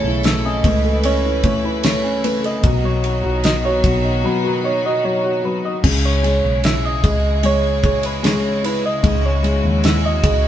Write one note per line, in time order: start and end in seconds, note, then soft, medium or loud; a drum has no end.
0.00 0.60 B1 medium
0.00 2.20 C#3 medium
0.00 2.60 C#3 medium
0.00 2.60 E3 medium
0.00 0.24 A3 medium
0.00 2.60 A3 medium
0.00 0.43 C#4 medium
0.00 0.05 E4 medium
0.00 2.60 E4 medium
0.00 0.62 A4 medium
0.00 0.26 C#5 medium
0.05 1.23 E4 medium
0.23 0.63 A3 medium
0.23 0.47 E5 loud
0.23 snare loud
0.23 ride medium
0.23 tambourine medium
0.45 1.03 C#4 medium
0.45 1.07 D#5 loud
0.64 2.60 C#2 loud
0.64 1.43 A3 medium
0.64 2.62 B4 medium
0.64 kick medium
0.64 ride medium
0.84 2.40 A4 medium
1.03 2.02 C#4 medium
1.03 1.45 C#5 loud
1.03 ride medium
1.25 1.62 E4 medium
1.43 1.83 A3 medium
1.43 1.67 C#5 medium
1.43 kick loud
1.43 ride medium
1.64 2.61 E4 medium
1.64 1.86 B4 medium
1.83 2.22 A3 medium
1.83 2.26 C#5 medium
1.83 snare loud
1.83 ride medium
1.83 tambourine medium
2.04 2.62 C#4 medium
2.24 2.63 A3 medium
2.24 2.47 B4 medium
2.24 ride medium
2.43 2.63 A4 medium
2.43 2.87 D#5 medium
2.43 ride soft
2.63 3.20 B1 loud
2.63 5.80 B2 medium
2.63 5.81 B2 medium
2.63 5.81 D#3 medium
2.63 5.81 F#3 medium
2.63 5.81 D#4 medium
2.63 5.81 F#4 medium
2.63 kick loud
2.63 ride medium
2.84 3.43 F#3 medium
2.84 3.47 C#5 medium
3.04 4.03 D#4 medium
3.04 ride medium
3.24 3.80 B1 medium
3.24 3.63 F#4 medium
3.44 3.82 F#3 medium
3.44 3.67 D#5 medium
3.44 snare loud
3.44 ride medium
3.44 tambourine medium
3.64 4.43 F#4 medium
3.64 4.27 C#5 loud
3.84 4.22 B1 medium
3.84 4.22 F#3 medium
3.84 kick medium
3.84 ride medium
4.04 4.62 D#4 medium
4.24 5.02 F#3 medium
4.24 4.67 B4 loud
4.44 4.83 F#4 medium
4.64 5.63 D#4 medium
4.64 4.85 C#5 medium
4.84 5.23 F#4 medium
4.84 5.04 D#5 medium
5.04 5.42 F#3 medium
5.04 5.47 C#5 medium
5.24 5.82 F#4 medium
5.44 5.83 F#3 soft
5.44 5.65 B4 medium
5.64 5.83 D#4 medium
5.64 5.79 D#5 medium
5.83 6.40 C#2 loud
5.83 10.48 C#3 medium
5.83 9.00 C#3 medium
5.83 10.48 G#3 medium
5.83 10.48 E4 medium
5.83 9.01 G#4 medium
5.83 kick loud
5.83 crash loud
6.05 6.67 C#5 loud
6.23 7.42 G#3 medium
6.23 ride soft
6.44 7.00 B1 medium
6.63 8.20 E4 medium
6.63 6.87 E5 loud
6.63 snare loud
6.63 ride medium
6.85 7.47 D#5 loud
7.03 9.00 C#2 loud
7.03 7.82 G#4 medium
7.03 kick medium
7.03 ride medium
7.43 8.22 G#3 medium
7.43 7.85 C#5 loud
7.43 ride medium
7.83 9.40 G#4 medium
7.83 8.07 C#5 loud
7.83 kick medium
7.83 ride medium
8.03 8.27 B4 medium
8.03 ride medium
8.23 9.42 G#3 medium
8.23 8.67 C#5 loud
8.23 snare loud
8.23 ride medium
8.63 9.82 E4 medium
8.63 8.87 B4 medium
8.63 ride medium
8.86 9.27 D#5 loud
9.03 9.60 C#2 loud
9.03 10.48 G#2 medium
9.03 10.48 F#4 medium
9.03 kick loud
9.03 ride medium
9.26 9.87 C#5 loud
9.43 10.48 G#3 medium
9.43 ride medium
9.64 10.20 D#2 medium
9.83 10.48 E4 medium
9.83 10.07 E5 loud
9.83 snare loud
9.83 ride medium
10.06 10.48 D#5 loud
10.23 10.48 C#2 loud
10.23 10.48 G#4 medium
10.23 kick loud
10.23 ride medium